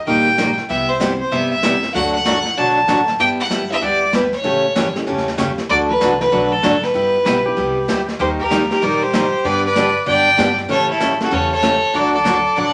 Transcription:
0.06 upright bass A#1, steel-string acoustic guitar D#3 G3 A#3 D#4 G4, fiddle G5, brush sweep
0.26 upright piano G3 A#3 D#4 G4
0.38 steel-string acoustic guitar D#3 G3 A#3 D#4 G4, snare, hi-hat pedal
0.58 snare
0.69 upright bass C2, steel-string acoustic guitar C3 G3 B3 E4 G4, fiddle E5, brush sweep
0.89 fiddle C5
0.99 steel-string acoustic guitar C3 G3 B3 E4 G4, upright piano G3 B3 C4 E4, snare, hi-hat pedal
1.20 fiddle C5
1.32 upright bass G1, steel-string acoustic guitar C3 G3 B3 E4 G4, fiddle E5, brush sweep
1.51 fiddle E5
1.62 steel-string acoustic guitar C3 G3 B3 E4 G4, upright piano G3 B3 C4 E4, snare, hi-hat pedal
1.83 snare
1.94 upright bass D2, steel-string acoustic guitar D3 F#3 A3 D4 F#4, fiddle F#5, brush sweep
2.14 fiddle F#5
2.24 steel-string acoustic guitar D3 F#3 A3 D4 F#4, upright piano F#3 A3 D4 F#4, snare, hi-hat pedal
2.46 snare
2.56 upright bass B1, steel-string acoustic guitar D3 F#3 A3 D4 F#4, fiddle A5, brush sweep
2.87 upright bass A1, steel-string acoustic guitar D3 F#3 A3 D4 F#4, upright piano F#3 A3 D4 F#4, snare, hi-hat pedal
3.08 snare
3.19 upright bass G1, steel-string acoustic guitar G3 B3 E4 G4, fiddle G5, brush sweep
3.40 fiddle F#5
3.50 steel-string acoustic guitar G3 B3 E4 G4, snare, hi-hat pedal
3.70 upright piano G3 B3 D4 E4, fiddle E5
3.81 upright bass D2, steel-string acoustic guitar G3 B3 E4 G4, fiddle D5, brush sweep
4.13 steel-string acoustic guitar G3 B3 E4 G4, fiddle B4, snare, hi-hat pedal
4.33 fiddle C#5, snare
4.44 upright bass A1, steel-string acoustic guitar C#3 E3 A3 C#4 G4, brush sweep
4.75 steel-string acoustic guitar C#3 E3 A3 C#4 G4, snare, hi-hat pedal
4.95 upright piano G3 A3 C#4 E4, snare
5.06 upright bass E2, steel-string acoustic guitar C#3 E3 A3 C#4 G4, brush sweep
5.18 snare
5.28 snare
5.37 steel-string acoustic guitar C#3 E3 A3 C#4 G4, upright piano G3 A3 C#4 G4, snare, hi-hat pedal
5.58 snare
5.69 upright bass D2, steel-string acoustic guitar D3 F#3 A3 D4 F#4, fiddle D5, brush sweep
5.89 upright piano F#3 A3 D4 F#4, fiddle B4
6.00 upright bass C2, steel-string acoustic guitar D3 F#3 A3 D4 F#4, snare, hi-hat pedal
6.19 upright piano F#3 A3 D4 F#4, fiddle B4, snare
6.32 upright bass B1, steel-string acoustic guitar D3 F#3 A3 D4 F#4, brush sweep
6.52 fiddle A4
6.63 upright bass A1, steel-string acoustic guitar D3 F#3 A3 D4 F#4, snare, hi-hat pedal
6.83 fiddle B4, snare
6.94 upright bass G1, steel-string acoustic guitar G3 B3 E4 G4, brush sweep
7.25 upright bass B1, steel-string acoustic guitar G3 B3 E4 G4, electric slide guitar B4, snare, hi-hat pedal
7.45 upright piano G3 B3 D4 E4, electric slide guitar G4
7.56 upright bass C2, steel-string acoustic guitar G3 B3 E4 G4, brush sweep
7.88 upright bass D2, steel-string acoustic guitar G3 B3 E4 G4, snare, hi-hat pedal
8.08 snare
8.19 upright bass D#2, steel-string acoustic guitar D#3 G3 A#3 D#4 G4, fiddle G4 C5, brush sweep
8.39 fiddle G4 A#4, kick
8.50 steel-string acoustic guitar D#3 G3 A#3 D#4 G4, snare, hi-hat pedal
8.70 upright piano G3 A#3 D#4 G4, fiddle G4 A#4, snare
8.82 upright bass A#1, steel-string acoustic guitar D#3 G3 A#3 D#4 G4, fiddle A#4 D5, brush sweep
9.02 fiddle G4 C5
9.13 steel-string acoustic guitar D#3 G3 A#3 D#4 G4, snare, hi-hat pedal
9.44 upright bass G2, steel-string acoustic guitar D3 G3 B3 D4 G4, fiddle B4 D5, brush sweep
9.65 fiddle B4 D5
9.76 steel-string acoustic guitar D3 G3 B3 D4 G4, snare, hi-hat pedal
10.06 upright bass F#2, steel-string acoustic guitar D3 G3 B3 D4 G4, fiddle D5 G5, brush sweep
10.37 upright bass G2, steel-string acoustic guitar D3 G3 B3 D4 G4, upright piano G3 B3 D4 G4, snare, hi-hat pedal
10.58 snare
10.68 steel-string acoustic guitar C#3 E3 A3 C#4 G4, fiddle A4 C#5, brush sweep
10.90 fiddle E4 A4
11.00 steel-string acoustic guitar C#3 E3 A3 C#4 G4, snare, hi-hat pedal
11.20 upright piano G3 A3 C#4 E4, fiddle F#4 A4, snare
11.31 upright bass E2, steel-string acoustic guitar C#3 E3 A3 C#4 G4, fiddle A4 C#5, brush sweep
11.52 fiddle A4 C#5
11.62 steel-string acoustic guitar C#3 E3 A3 C#4 G4, snare, hi-hat pedal
11.94 upright bass D2, steel-string acoustic guitar D3 F#3 A3 D4 F#4, fiddle A4 D5, brush sweep
12.14 fiddle A4 D5
12.24 steel-string acoustic guitar D3 F#3 A3 D4 F#4, snare, hi-hat pedal
12.56 upright bass A1, steel-string acoustic guitar D3 F#3 A3 D4 F#4, fiddle D5 F#5

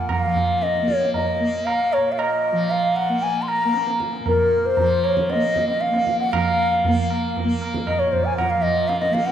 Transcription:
Already playing: tanpura A#2 F3 A#3, bansuri F#5
0.09 bansuri F5, tabla na, tabla ge
0.25 tanpura F3
0.35 tabla ge
0.62 bansuri D#5, tabla te
0.75 tabla te
0.82 tanpura A#3
0.88 tabla ke
0.95 bansuri C#5
1.01 tabla te
1.14 bansuri D#5, tabla tin, tabla ge
1.40 tanpura A#3
1.66 bansuri F5, tabla na
1.93 bansuri C#5, tabla na
1.97 tanpura A#2
2.12 bansuri F5
2.18 bansuri D#5, tabla na
2.44 tabla na
2.52 tanpura F3
2.70 bansuri F5, tabla tin
2.96 bansuri F#5, tabla na
3.09 tanpura A#3
3.22 bansuri G#5, tabla tin
3.42 bansuri C6
3.48 bansuri A#5, tabla na
3.65 tanpura A#3
3.74 tabla te
3.87 tabla te
4.00 tabla ke
4.13 tabla te
4.20 tanpura A#2
4.26 bansuri A#4, tabla tin, tabla ge
4.66 bansuri C5
4.77 tanpura F3, tabla tin, tabla ge
5.04 bansuri C#5, tabla na
5.17 tabla ke
5.29 bansuri D#5, tabla te
5.35 tanpura A#3
5.42 tabla te
5.56 tabla ke
5.68 bansuri D#5, tabla te
5.81 bansuri F5, tabla te
5.91 tanpura A#3, tabla te
6.07 tabla ke
6.20 bansuri F#5, tabla te
6.32 tanpura F3, bansuri F5, tabla na, tabla ge
6.84 tanpura A#3, tabla tin, tabla ge
7.10 tabla na
7.36 tabla tin, tabla ge
7.44 tanpura A#3
7.62 tabla na
7.74 tabla ke
7.87 bansuri D#5, tabla na, tabla ge
7.99 tanpura A#2, bansuri C#5
8.12 bansuri C5, tabla ge
8.25 bansuri G#5
8.37 bansuri F#5, tabla na, tabla ge
8.50 bansuri F5
8.56 tanpura F3
8.62 bansuri D#5, tabla ge
8.88 bansuri F5, tabla te
9.00 bansuri D#5, tabla te
9.11 tanpura A#3, bansuri F5, tabla ke
9.26 bansuri F#5, tabla te

